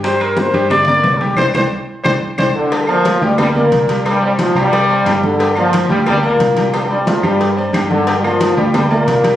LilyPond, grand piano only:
\new Staff \with { instrumentName = "Grand piano" } { \time 4/4 \key g \minor \tempo 4 = 179 <g g' g''>4 <bes bes' bes''>8 <g g' g''>4 <bes bes' bes''>4 <g g' g''>8 | <c'' d'' g''>8 <c'' d'' g''>8 r4 <c'' d'' g''>8 r8 <c'' d'' g''>8 r8 | <g g' g''>8 <bes bes' d''>4 <g g' g''>4 <bes bes' d''>4 <g g' g''>8~ | <g g' g''>8 <c' c'' d''>4 <g g' g''>4 <c' c'' d''>8 <g g' g''>4 |
<g g' g''>8 <bes bes' d''>4 <g g' g''>4 <bes bes' d''>4 <g g' g''>8~ | <g g' g''>8 <c' c'' d''>4 <g g' g''>4 <c' c'' d''>8 <g g' g''>4 | <g g' g''>8 <bes bes' d''>4 <g g' g''>4 <bes bes' d''>4 <g g' g''>8 | }